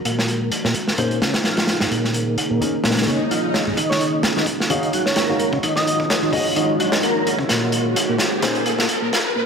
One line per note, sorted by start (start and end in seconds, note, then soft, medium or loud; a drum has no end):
0.05 0.51 A#2 medium
0.05 3.74 A#3 medium
0.05 3.74 C#4 medium
0.05 3.74 D#4 medium
0.05 3.74 G#4 medium
0.05 1.89 C5 medium
0.05 closed hi-hat medium
0.19 snare medium
0.28 closed hi-hat medium
0.52 closed hi-hat medium
0.64 0.74 A#2 loud
0.64 snare medium
0.75 closed hi-hat medium
0.88 snare soft
0.98 1.20 A#2 loud
0.98 1.15 A#3 medium
0.98 1.15 C#4 medium
0.98 1.15 D#4 medium
0.98 1.15 G#4 medium
0.98 1.15 C5 loud
0.98 closed hi-hat loud
1.11 closed hi-hat soft
1.21 1.34 C#3 medium
1.21 snare medium
1.21 closed hi-hat medium
1.34 snare loud
1.34 closed hi-hat medium
1.44 1.79 F3 medium
1.44 snare medium
1.44 closed hi-hat medium
1.57 snare loud
1.57 closed hi-hat medium
1.67 snare medium
1.67 closed hi-hat medium
1.80 1.86 G#2 medium
1.80 snare medium
1.80 closed hi-hat medium
1.91 2.37 A#2 medium
1.91 3.76 C#5 loud
1.91 closed hi-hat medium
2.04 snare soft
2.14 closed hi-hat medium
2.38 closed hi-hat medium
2.51 2.61 A#2 loud
2.61 2.72 A#3 medium
2.61 2.72 C#4 medium
2.61 2.72 D#4 medium
2.61 2.72 G#4 medium
2.61 2.72 A#4 medium
2.61 closed hi-hat medium
2.84 3.07 A#2 loud
2.84 snare medium
2.84 closed hi-hat medium
2.84 swell medium
2.91 snare medium
2.91 closed hi-hat medium
2.97 snare medium
2.97 closed hi-hat medium
3.02 snare medium
3.02 closed hi-hat medium
3.07 3.20 C#3 medium
3.07 3.19 A#3 medium
3.07 3.19 C#4 medium
3.07 3.19 D#4 medium
3.07 3.19 G#4 medium
3.07 3.19 C#5 medium
3.07 closed hi-hat medium
3.31 3.66 F3 medium
3.31 closed hi-hat medium
3.54 snare medium
3.54 closed hi-hat medium
3.67 3.72 G#2 medium
3.77 4.23 D#3 medium
3.77 7.46 G#3 medium
3.77 9.32 D#4 medium
3.77 7.46 F4 medium
3.77 7.46 F#4 medium
3.77 7.46 C#5 medium
3.77 kick loud
3.77 closed hi-hat medium
3.77 riser medium
3.89 4.03 C#5 medium
3.89 snare soft
4.01 closed hi-hat medium
4.23 snare loud
4.23 closed hi-hat medium
4.36 4.47 D#3 loud
4.36 snare medium
4.46 kick loud
4.46 closed hi-hat medium
4.60 snare soft
4.70 4.93 D#3 loud
4.70 4.87 D#4 medium
4.70 4.87 F#4 medium
4.70 4.87 G#4 medium
4.70 4.87 C#5 medium
4.70 4.87 F5 loud
4.70 kick loud
4.70 closed hi-hat medium
4.83 closed hi-hat soft
4.93 5.06 F#3 medium
4.93 closed hi-hat medium
5.06 5.19 C#5 medium
5.06 snare soft
5.16 5.52 A#3 medium
5.16 snare loud
5.16 closed hi-hat medium
5.29 5.39 D#4 medium
5.29 5.39 F#4 medium
5.29 5.39 G#4 medium
5.29 5.39 C#5 medium
5.29 5.39 F5 medium
5.39 closed hi-hat medium
5.53 5.58 C#3 medium
5.53 kick medium
5.63 6.09 D#3 medium
5.63 kick loud
5.63 closed hi-hat medium
5.76 5.83 D#5 medium
5.76 snare soft
5.87 5.95 D#5 medium
5.87 closed hi-hat medium
6.00 kick medium
6.10 snare loud
6.10 closed hi-hat medium
6.23 6.33 D#3 loud
6.33 6.44 D#4 medium
6.33 6.44 F#4 medium
6.33 6.44 G#4 medium
6.33 6.44 C#5 medium
6.33 6.44 D#5 medium
6.33 kick medium
6.33 open hi-hat medium
6.56 6.79 D#3 loud
6.56 closed hi-hat medium
6.80 6.92 F#3 medium
6.80 closed hi-hat medium
6.92 snare loud
7.03 7.38 A#3 medium
7.03 closed hi-hat medium
7.27 closed hi-hat medium
7.39 7.45 C#3 medium
7.39 kick medium
7.49 7.95 A#2 medium
7.49 9.34 A#3 medium
7.49 9.34 C#4 medium
7.49 9.34 G#4 medium
7.49 9.34 C5 medium
7.49 snare medium
7.49 closed hi-hat medium
7.72 closed hi-hat medium
7.96 closed hi-hat loud
8.09 8.19 A#2 medium
8.18 snare medium
8.18 closed hi-hat medium
8.42 8.88 A#2 medium
8.42 8.60 A#3 medium
8.42 8.60 C#4 medium
8.42 8.60 D#4 medium
8.42 8.59 G#4 medium
8.42 8.60 C5 loud
8.42 snare medium
8.42 closed hi-hat loud
8.55 closed hi-hat soft
8.66 closed hi-hat medium
8.79 snare medium
8.89 closed hi-hat medium
9.02 9.12 A#2 loud
9.13 snare medium
9.13 closed hi-hat medium
9.35 9.46 A#2 medium
9.35 noise sweep medium